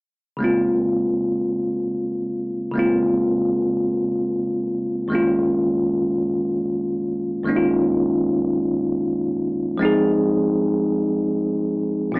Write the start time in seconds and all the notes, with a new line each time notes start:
0.37 C#3 G#3 A#3
0.43 C4 F4
2.71 C#3 G#3
2.76 A#3 C4 F4
5.08 F#2 D#3 G#3 A#3
5.13 C#4 F4
7.43 F#2 D#3 G#3
7.47 A#3 C#4 D#4
7.57 F4
9.78 F3 G#3 C4
9.83 D#4 G#4
12.12 A#2 F3 C4